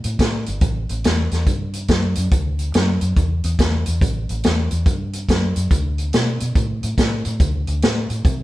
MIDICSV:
0, 0, Header, 1, 3, 480
1, 0, Start_track
1, 0, Tempo, 424028
1, 706, Time_signature, 4, 2, 24, 8
1, 9545, End_track
2, 0, Start_track
2, 0, Title_t, "Fingered electric bass"
2, 0, Program_c, 0, 33
2, 54, Note_on_c, 0, 45, 89
2, 214, Note_off_c, 0, 45, 0
2, 222, Note_on_c, 0, 45, 84
2, 506, Note_off_c, 0, 45, 0
2, 541, Note_on_c, 0, 31, 85
2, 694, Note_off_c, 0, 31, 0
2, 701, Note_on_c, 0, 33, 99
2, 985, Note_off_c, 0, 33, 0
2, 1020, Note_on_c, 0, 33, 87
2, 1178, Note_off_c, 0, 33, 0
2, 1193, Note_on_c, 0, 40, 91
2, 1472, Note_off_c, 0, 40, 0
2, 1493, Note_on_c, 0, 40, 84
2, 1654, Note_off_c, 0, 40, 0
2, 1663, Note_on_c, 0, 43, 76
2, 2108, Note_off_c, 0, 43, 0
2, 2143, Note_on_c, 0, 42, 90
2, 2427, Note_off_c, 0, 42, 0
2, 2458, Note_on_c, 0, 42, 93
2, 2617, Note_off_c, 0, 42, 0
2, 2629, Note_on_c, 0, 38, 99
2, 3072, Note_off_c, 0, 38, 0
2, 3115, Note_on_c, 0, 42, 90
2, 3394, Note_off_c, 0, 42, 0
2, 3415, Note_on_c, 0, 42, 91
2, 3576, Note_off_c, 0, 42, 0
2, 3588, Note_on_c, 0, 40, 83
2, 3870, Note_off_c, 0, 40, 0
2, 3899, Note_on_c, 0, 40, 100
2, 4057, Note_off_c, 0, 40, 0
2, 4068, Note_on_c, 0, 40, 86
2, 4350, Note_off_c, 0, 40, 0
2, 4385, Note_on_c, 0, 40, 89
2, 4541, Note_off_c, 0, 40, 0
2, 4550, Note_on_c, 0, 33, 101
2, 4831, Note_off_c, 0, 33, 0
2, 4869, Note_on_c, 0, 33, 89
2, 5023, Note_off_c, 0, 33, 0
2, 5043, Note_on_c, 0, 40, 98
2, 5318, Note_off_c, 0, 40, 0
2, 5339, Note_on_c, 0, 40, 85
2, 5498, Note_off_c, 0, 40, 0
2, 5503, Note_on_c, 0, 43, 90
2, 5948, Note_off_c, 0, 43, 0
2, 5987, Note_on_c, 0, 42, 92
2, 6269, Note_off_c, 0, 42, 0
2, 6300, Note_on_c, 0, 42, 91
2, 6458, Note_off_c, 0, 42, 0
2, 6467, Note_on_c, 0, 38, 99
2, 6910, Note_off_c, 0, 38, 0
2, 6952, Note_on_c, 0, 47, 101
2, 7232, Note_off_c, 0, 47, 0
2, 7266, Note_on_c, 0, 47, 77
2, 7417, Note_off_c, 0, 47, 0
2, 7424, Note_on_c, 0, 45, 97
2, 7707, Note_off_c, 0, 45, 0
2, 7739, Note_on_c, 0, 45, 93
2, 7891, Note_off_c, 0, 45, 0
2, 7898, Note_on_c, 0, 45, 87
2, 8184, Note_off_c, 0, 45, 0
2, 8219, Note_on_c, 0, 45, 95
2, 8373, Note_off_c, 0, 45, 0
2, 8379, Note_on_c, 0, 38, 95
2, 8664, Note_off_c, 0, 38, 0
2, 8697, Note_on_c, 0, 38, 88
2, 8856, Note_off_c, 0, 38, 0
2, 8866, Note_on_c, 0, 45, 86
2, 9148, Note_off_c, 0, 45, 0
2, 9170, Note_on_c, 0, 45, 77
2, 9332, Note_off_c, 0, 45, 0
2, 9344, Note_on_c, 0, 48, 94
2, 9545, Note_off_c, 0, 48, 0
2, 9545, End_track
3, 0, Start_track
3, 0, Title_t, "Drums"
3, 42, Note_on_c, 9, 42, 64
3, 155, Note_off_c, 9, 42, 0
3, 216, Note_on_c, 9, 42, 91
3, 217, Note_on_c, 9, 36, 76
3, 231, Note_on_c, 9, 38, 114
3, 330, Note_off_c, 9, 36, 0
3, 330, Note_off_c, 9, 42, 0
3, 344, Note_off_c, 9, 38, 0
3, 523, Note_on_c, 9, 42, 63
3, 636, Note_off_c, 9, 42, 0
3, 690, Note_on_c, 9, 42, 83
3, 696, Note_on_c, 9, 36, 119
3, 803, Note_off_c, 9, 42, 0
3, 809, Note_off_c, 9, 36, 0
3, 1009, Note_on_c, 9, 42, 57
3, 1122, Note_off_c, 9, 42, 0
3, 1179, Note_on_c, 9, 42, 81
3, 1193, Note_on_c, 9, 38, 102
3, 1292, Note_off_c, 9, 42, 0
3, 1307, Note_off_c, 9, 38, 0
3, 1486, Note_on_c, 9, 42, 54
3, 1501, Note_on_c, 9, 38, 31
3, 1599, Note_off_c, 9, 42, 0
3, 1614, Note_off_c, 9, 38, 0
3, 1659, Note_on_c, 9, 42, 73
3, 1660, Note_on_c, 9, 36, 97
3, 1772, Note_off_c, 9, 42, 0
3, 1773, Note_off_c, 9, 36, 0
3, 1963, Note_on_c, 9, 42, 59
3, 2076, Note_off_c, 9, 42, 0
3, 2130, Note_on_c, 9, 42, 78
3, 2138, Note_on_c, 9, 36, 78
3, 2145, Note_on_c, 9, 38, 111
3, 2244, Note_off_c, 9, 42, 0
3, 2251, Note_off_c, 9, 36, 0
3, 2258, Note_off_c, 9, 38, 0
3, 2438, Note_on_c, 9, 42, 69
3, 2551, Note_off_c, 9, 42, 0
3, 2619, Note_on_c, 9, 42, 88
3, 2622, Note_on_c, 9, 36, 121
3, 2732, Note_off_c, 9, 42, 0
3, 2736, Note_off_c, 9, 36, 0
3, 2928, Note_on_c, 9, 42, 58
3, 3042, Note_off_c, 9, 42, 0
3, 3100, Note_on_c, 9, 42, 86
3, 3114, Note_on_c, 9, 38, 119
3, 3213, Note_off_c, 9, 42, 0
3, 3228, Note_off_c, 9, 38, 0
3, 3406, Note_on_c, 9, 42, 63
3, 3519, Note_off_c, 9, 42, 0
3, 3583, Note_on_c, 9, 36, 102
3, 3583, Note_on_c, 9, 42, 74
3, 3696, Note_off_c, 9, 36, 0
3, 3696, Note_off_c, 9, 42, 0
3, 3890, Note_on_c, 9, 42, 67
3, 4003, Note_off_c, 9, 42, 0
3, 4061, Note_on_c, 9, 42, 87
3, 4063, Note_on_c, 9, 36, 87
3, 4076, Note_on_c, 9, 38, 113
3, 4174, Note_off_c, 9, 42, 0
3, 4176, Note_off_c, 9, 36, 0
3, 4189, Note_off_c, 9, 38, 0
3, 4366, Note_on_c, 9, 42, 68
3, 4480, Note_off_c, 9, 42, 0
3, 4544, Note_on_c, 9, 36, 116
3, 4551, Note_on_c, 9, 42, 89
3, 4658, Note_off_c, 9, 36, 0
3, 4664, Note_off_c, 9, 42, 0
3, 4856, Note_on_c, 9, 42, 57
3, 4969, Note_off_c, 9, 42, 0
3, 5020, Note_on_c, 9, 42, 78
3, 5035, Note_on_c, 9, 38, 119
3, 5133, Note_off_c, 9, 42, 0
3, 5148, Note_off_c, 9, 38, 0
3, 5328, Note_on_c, 9, 42, 62
3, 5441, Note_off_c, 9, 42, 0
3, 5501, Note_on_c, 9, 36, 102
3, 5503, Note_on_c, 9, 42, 78
3, 5614, Note_off_c, 9, 36, 0
3, 5616, Note_off_c, 9, 42, 0
3, 5810, Note_on_c, 9, 42, 58
3, 5923, Note_off_c, 9, 42, 0
3, 5983, Note_on_c, 9, 36, 73
3, 5985, Note_on_c, 9, 42, 82
3, 6000, Note_on_c, 9, 38, 114
3, 6097, Note_off_c, 9, 36, 0
3, 6098, Note_off_c, 9, 42, 0
3, 6113, Note_off_c, 9, 38, 0
3, 6290, Note_on_c, 9, 42, 67
3, 6404, Note_off_c, 9, 42, 0
3, 6462, Note_on_c, 9, 36, 108
3, 6462, Note_on_c, 9, 42, 88
3, 6575, Note_off_c, 9, 36, 0
3, 6576, Note_off_c, 9, 42, 0
3, 6770, Note_on_c, 9, 42, 53
3, 6883, Note_off_c, 9, 42, 0
3, 6937, Note_on_c, 9, 42, 84
3, 6951, Note_on_c, 9, 38, 120
3, 7050, Note_off_c, 9, 42, 0
3, 7065, Note_off_c, 9, 38, 0
3, 7247, Note_on_c, 9, 42, 63
3, 7360, Note_off_c, 9, 42, 0
3, 7419, Note_on_c, 9, 42, 78
3, 7420, Note_on_c, 9, 36, 105
3, 7532, Note_off_c, 9, 42, 0
3, 7533, Note_off_c, 9, 36, 0
3, 7729, Note_on_c, 9, 42, 66
3, 7842, Note_off_c, 9, 42, 0
3, 7898, Note_on_c, 9, 42, 96
3, 7899, Note_on_c, 9, 36, 87
3, 7913, Note_on_c, 9, 38, 115
3, 8011, Note_off_c, 9, 42, 0
3, 8012, Note_off_c, 9, 36, 0
3, 8026, Note_off_c, 9, 38, 0
3, 8204, Note_on_c, 9, 42, 71
3, 8317, Note_off_c, 9, 42, 0
3, 8375, Note_on_c, 9, 42, 92
3, 8376, Note_on_c, 9, 36, 114
3, 8488, Note_off_c, 9, 42, 0
3, 8490, Note_off_c, 9, 36, 0
3, 8684, Note_on_c, 9, 42, 58
3, 8797, Note_off_c, 9, 42, 0
3, 8855, Note_on_c, 9, 42, 78
3, 8869, Note_on_c, 9, 38, 115
3, 8968, Note_off_c, 9, 42, 0
3, 8983, Note_off_c, 9, 38, 0
3, 9166, Note_on_c, 9, 42, 59
3, 9279, Note_off_c, 9, 42, 0
3, 9336, Note_on_c, 9, 36, 112
3, 9336, Note_on_c, 9, 42, 74
3, 9449, Note_off_c, 9, 36, 0
3, 9449, Note_off_c, 9, 42, 0
3, 9545, End_track
0, 0, End_of_file